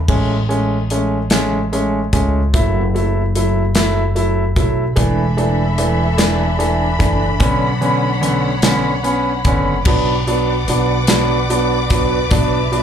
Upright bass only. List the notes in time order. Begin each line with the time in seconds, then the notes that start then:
0.09 A1
2.14 C#2
2.54 F#1
4.56 B1
4.97 E1
7.00 F#1
7.40 B1
9.45 F#1
9.86 B1
10.68 B1
12.31 B1